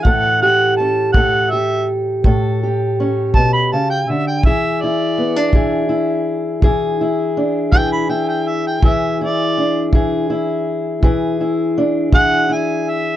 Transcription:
<<
  \new Staff \with { instrumentName = "Harmonica" } { \time 12/8 \key e \mixolydian \tempo 4. = 55 fis''8 fis''8 a''8 fis''8 e''8 r2 a''16 b''16 a''16 g''16 e''16 g''16 | e''8 d''4 r2. g''16 b''16 g''16 g''16 e''16 g''16 | e''8 d''4 r2. fis''8 gis''8 e''8 | }
  \new Staff \with { instrumentName = "Steel-string acoustic guitar" } { \time 12/8 \key e \mixolydian << { a'8 g'8 cis'8 a'8 g'4 a'8 g'8 cis'2 | gis'8 e'8 b16 d'16 gis'8 e'4 gis'8 e'8 d'8 gis'8 e'4 | gis'8 e'8 d'8 gis'8 e'4 gis'8 e'8 d'8 gis'8 e'4 | } \\ { a,4. a,4. a,4. b,8 cis8 d8 | e4. e4. e4. e4. | e4. e4. e4. e4. | } >> }
  \new DrumStaff \with { instrumentName = "Drums" } \drummode { \time 12/8 bd4. bd4. bd4. bd4. | bd4. bd4. bd4. bd4. | bd4. bd4. bd4. bd4. | }
>>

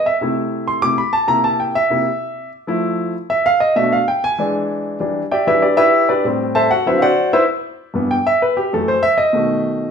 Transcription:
<<
  \new Staff \with { instrumentName = "Grand piano" } { \time 4/4 \key c \major \tempo 4 = 194 e''8 r4. c'''8 d'''8 b''8 a''8 | bes''8 a''8 g''8 e''2~ e''8 | r2 r8 e''8 f''8 dis''8 | e''8 f''8 g''8 gis''4 r4. |
\key e \minor r4 <g' d'' e'' g''>8 <e' g' b' e''>8 <d' g' b' d''>8 <e' g' b' e''>4 <d' g' b' d''>8 | r4 <a' c'' e'' a''>8 <fis' fis''>8 <e' b' c'' e''>8 <fis' c'' d'' f'' fis''>4 <e' b' c'' e''>8 | r2 g''8 e''8 b'8 g'8 | a'8 c''8 e''8 dis''2~ dis''8 | }
  \new Staff \with { instrumentName = "Grand piano" } { \clef bass \time 4/4 \key c \major r8 <c a e'>2 <c a e'>8 r4 | <c bes e'>4. r8 <c bes e'>8 r4. | r8 <f a e'>4. r2 | <b, a d'>8 r4. <e gis d'>2 |
\key e \minor <e g d'>8 r4 <e g d'>8 r2 | <a, g c'>4. r8 <d fis c'>8 r4. | r4. <g, e b>8 r2 | <fis, e a>8 r4. <b, dis a>2 | }
>>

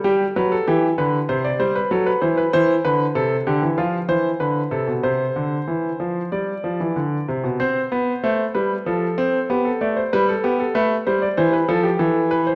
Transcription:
<<
  \new Staff \with { instrumentName = "Grand piano" } { \time 4/4 \key c \major \tempo 4 = 96 g'8 b'16 a'16 g'8 b'8 c''16 d''16 c''16 b'16 a'16 b'16 c''16 b'16 | c''8 b'8 a'8 g'8 f'8 c''8 b'8 a'8 | c''2 d''4. r8 | c''4 c''8 b'8 a'4 g'16 a'16 d''16 c''16 |
b'16 a'16 g'16 a'16 b'8 c''16 d''16 c''16 b'16 a'16 g'16 a'8 b'16 c''16 | }
  \new Staff \with { instrumentName = "Grand piano" } { \clef bass \time 4/4 \key c \major g8 fis8 e8 d8 c8 g8 fis8 e8 | e8 d8 c8 d16 e16 f8 e8 d8 c16 b,16 | c8 d8 e8 f8 g8 f16 e16 d8 c16 b,16 | c'8 b8 a8 g8 f8 c'8 b8 a8 |
g8 b8 a8 g8 e8 f8 e4 | }
>>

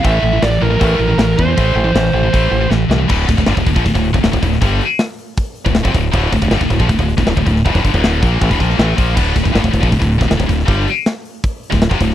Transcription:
<<
  \new Staff \with { instrumentName = "Lead electric guitar" } { \time 4/4 \key d \minor \tempo 4 = 158 e''4 d''8 bes'4. bes'8 c''8~ | c''2. r4 | r1 | r1 |
r1 | r1 | r1 | r1 | }
  \new Staff \with { instrumentName = "Distorted electric guitar" } { \clef bass \time 4/4 \key d \minor <a, e a>8 <a, e>16 <a, e>16 <a, e>8 <a, e>16 <a, e>16 <a, e a>8 <a, e>16 <a, e>16 <a, e>8 <a, e>16 <a, e>16 | <a, e a>8 <a, e>16 <a, e>16 <a, e>8 <a, e>16 <a, e>16 <a, e a>8 <a, e>16 <a, e>16 <a, e>8 <a, e>16 <a, e>16 | <d, a, d>8 <d, a,>16 <d, a,>16 <g, d>16 <d, a,>16 <d, a,>16 <bes, f>16 <d, a,>16 <d, a,>8 <d, a,>16 <d, a,>16 <d, a,>16 <d, a,>8 | <g, d g>8 r2 r16 <d, a,>8 <f, c>16 <d, a,>8 |
<d, a, d>8 <d, a,>16 <d, a,>16 <g, d>16 <d, a,>16 <d, a,>16 <bes, f>16 <d, a,>16 <d, a,>8 <d, a,>16 <d, a,>16 <d, a,>16 <d, a,>8 | <e, b,>16 <d, a,>16 <g, d>16 <d, a, d>8. <bes, f bes>8 <a, e>16 <d, a,>16 <bes, f bes>8 <a, e a>8 <bes, f bes>8 | <d, a, d>8 <d, a,>16 <d, a,>16 <g, d>16 <d, a,>16 <d, a,>16 <bes, f>16 <d, a,>16 <d, a,>8 <d, a,>16 <d, a,>16 <d, a,>16 <d, a,>8 | <g, d g>8 r2 r16 <d, a,>8 <f, c>16 <d, a,>8 | }
  \new Staff \with { instrumentName = "Fingered electric bass" } { \clef bass \time 4/4 \key d \minor a,,8 a,,8 a,,8 a,,8 a,,8 a,,8 a,,8 e,8 | a,,8 a,,8 a,,8 a,,8 a,,8 a,,8 a,,8 c,8 | d,,8 d,,16 d,,16 g,,16 d,,16 d,,16 bes,,16 d,,16 d,,8 d,,16 d,,16 d,,16 d,,8 | g,,8 r2 r16 d,,8 f,,16 d,,8 |
d,,8 d,,16 d,,16 g,,16 d,,16 d,,16 bes,,16 d,,16 d,,8 d,,16 d,,16 d,,16 d,,8 | e,,16 d,,16 g,,16 d,,8. bes,,8 a,,16 d,,16 bes,,8 a,,8 bes,,8 | d,,8 d,,16 d,,16 g,,16 d,,16 d,,16 bes,,16 d,,16 d,,8 d,,16 d,,16 d,,16 d,,8 | g,,8 r2 r16 d,,8 f,,16 d,,8 | }
  \new DrumStaff \with { instrumentName = "Drums" } \drummode { \time 4/4 <hho bd>4 <hho sn>16 sn8. <hho bd>4 <hho sn>8 bd8 | <hho bd>4 <hho sn>16 sn8. <hho bd>4 sn8 sn8 | <cymc bd>8 <hho bd>16 bd16 <hho sn>16 bd16 <hho bd>16 bd16 <hho bd>16 bd16 hho16 bd16 <hho sn>16 bd16 <hho bd>16 sn16 | <hho bd>8 hho8 <hho sn>8 hho8 <hho bd>8 hho16 bd16 <hho sn>16 bd16 <hho bd>8 |
<hho bd>8 <hho bd>16 bd16 <hho sn>16 bd16 <hho bd>16 bd16 <hho bd>16 bd16 hho16 <bd sn>16 <hho sn>16 bd16 <hho bd>16 sn16 | <hho bd>16 bd16 <hho bd>16 bd16 <hho sn>8 <hho bd>8 <hho bd>16 bd16 <hho bd>16 sn16 <hho sn>8 <hho bd>8 | <cymc bd>8 <hho bd>16 bd16 <hho sn>16 bd16 <hho bd>16 bd16 <hho bd>16 bd16 hho16 <bd sn>16 <hho sn>16 bd16 <hho bd>16 sn16 | <hho bd>8 hho8 <hho sn>8 hho8 <hho bd>8 hho16 <bd sn>16 <hho sn>16 bd16 <hho bd>16 sn16 | }
>>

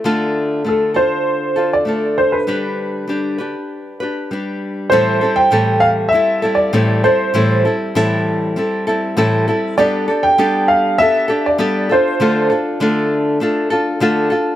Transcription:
<<
  \new Staff \with { instrumentName = "Upright piano" } { \time 4/4 \key a \minor \tempo 4 = 99 r4 a'8 c''4~ c''16 d''8. c''16 b'16~ | b'2. r4 | c''8. g''8. f''8 e''8. d''8. c''8~ | c''8 r2. r8 |
d''8. g''8. f''8 e''8. d''8. c''8~ | c''8 r2. r8 | }
  \new Staff \with { instrumentName = "Nylon-string guitar" } { \time 4/4 \key a \minor <d a d' f' a'>4 <a d' f' a'>8 <d' f' a'>4 <d' f' a'>8 <a d' f' a'>4 | <g d' g' b'>4 <g d' g' b'>8 <d' g' b'>4 <d' g' b'>8 <g d' g' b'>4 | <a, e g c' e' a'>8 <g c' e' a'>8 <a, e g c' a'>4 <g c' e' a'>8 <g c' e' a'>8 <a, e g c' e' a'>8 <g c' e' a'>8 | <a, e g c' e' a'>8 <g c' e' a'>8 <a, e g c' e' a'>4 <g c' e' a'>8 <g c' e' a'>8 <a, e g c' e' a'>8 <g c' e' a'>8 |
<g b d' g' a'>8 <d' g' a'>8 <g b d' g' a'>4 <b d' g' a'>8 <d' g' a'>8 <g b d' g' a'>8 <d' f' a'>8 | <d a d' f' a'>8 <d' f' a'>8 <d a d' f' a'>4 <a d' f' a'>8 <d' f' a'>8 <d a d' f' a'>8 <d' f' a'>8 | }
>>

